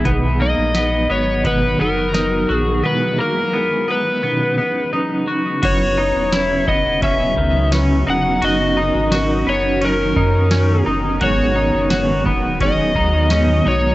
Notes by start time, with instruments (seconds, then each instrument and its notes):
0.04 sub bass B1, clean electric guitar B2 D#3 F#3 B3 D#4 B4, ambient pad D#3 F#3 D#4 F#4, kick, closed hi-hat
0.40 clean electric guitar F#3 A#3 B3 D#4, electric slide guitar D#5
0.58 sub bass A#1
0.74 clean electric guitar F#3 B3 D#4, snare, closed hi-hat
0.78 clean electric guitar B4
1.08 sub bass G#1, clean electric guitar F#3 B3 B4, electric slide guitar C#5
1.44 clean electric guitar B2 D#3 F#3 B3 D#4 B4, electric slide guitar B4, kick, closed hi-hat
1.80 sub bass F#1, clean electric guitar F#3 B3 D#4, electric slide guitar A#4
2.13 clean electric guitar F#3 B3 D#4, snare, closed hi-hat
2.49 sub bass A#1, clean electric guitar F#3 B3 D#4 F#4
2.56 electric slide guitar G#4
2.82 clean electric guitar B2 E3 G#3 B3 E4 G#4, electric slide guitar B4
3.17 clean electric guitar A#3 B3 E4 G#4, electric slide guitar A#4
3.22 clean electric guitar G#3
3.52 clean electric guitar G#3 B3 E4
3.56 clean electric guitar G#4
3.87 clean electric guitar B3 E4 G#4
3.91 clean electric guitar G#3, electric slide guitar B4
4.23 clean electric guitar B2 D#3 F#3 B3 C#4 D#4 B4
4.57 clean electric guitar F#3 B3 C#4 D#4 B4
4.92 clean electric guitar F#3 C#4 D#4 B4
5.27 clean electric guitar F#3 C#4 D#4 F#4 B4
5.62 sub bass F#1, ambient pad C#3 F#3 B3 C#4 F#4, clean electric guitar F#3 C#4 E4 F#4 B4, electric slide guitar C#5, kick, crash, ride
5.96 clean electric guitar D#4 E4 B4
6.01 clean electric guitar C#4
6.15 sub bass E1
6.32 clean electric guitar F#3 C#4 E4 B4, snare, ride, tambourine
6.66 sub bass D#1, clean electric guitar B3 E4 B4, electric slide guitar D#5, kick
6.71 clean electric guitar C#4
7.01 clean electric guitar F#3 C#4 E4, electric slide guitar E5, kick, ride
7.05 clean electric guitar B4
7.36 sub bass C#2, clean electric guitar D#3 B4, kick
7.40 clean electric guitar C#4
7.71 clean electric guitar F#3 C#4 E4 B4, snare, ride, tambourine
8.05 sub bass E1, clean electric guitar D#4 E4 B4
8.10 clean electric guitar C#4, electric slide guitar F#5
8.41 sub bass F#1, ambient pad D#3 B3 A#4, clean electric guitar F#3 C#4 D#4 F#4 A#4, electric slide guitar D#5, ride
8.76 clean electric guitar C#4 D#4 A#4
8.94 sub bass G#1
9.11 clean electric guitar F#3 C#4 D#4 F#4 A#4, snare, ride, tambourine
9.46 sub bass F#1, clean electric guitar B3 D#4 A#4, electric slide guitar C#5
9.50 clean electric guitar C#4
9.80 clean electric guitar F#3 C#4 D#4, ride
9.84 clean electric guitar A#4, electric slide guitar A#4
10.15 sub bass F#2, clean electric guitar D#4 A#4, kick
10.19 clean electric guitar C#4
10.51 clean electric guitar F#3 C#4 D#4 A#4, snare, ride, tambourine
10.85 sub bass F#1, clean electric guitar D#4 A#4
10.89 clean electric guitar C#4
11.20 sub bass G#1, clean electric guitar G#2 D#3 F#3 B3 D#4 F#4 G#4, ambient pad F#3 G#3 B3 F#4, electric slide guitar C#5, kick, ride
11.57 clean electric guitar F#3 B3 D#4
11.73 sub bass F#1
11.90 clean electric guitar G#2 D#3 F#3 B3 D#4 F#4 G#4, snare, ride, tambourine
12.25 sub bass D#1, clean electric guitar B3 D#4 G#4, kick
12.29 clean electric guitar F#3
12.60 clean electric guitar F#3 B3 C#4 D#4 G#4, electric slide guitar D#5, kick, ride
12.95 sub bass D#2, clean electric guitar F#3 B3 D#4, kick
13.30 clean electric guitar G#2 D#3 F#3 B3 C#4 D#4 G#4, snare, ride, tambourine
13.64 sub bass B1, clean electric guitar B3 D#4 G#4, electric slide guitar C#5
13.69 clean electric guitar F#3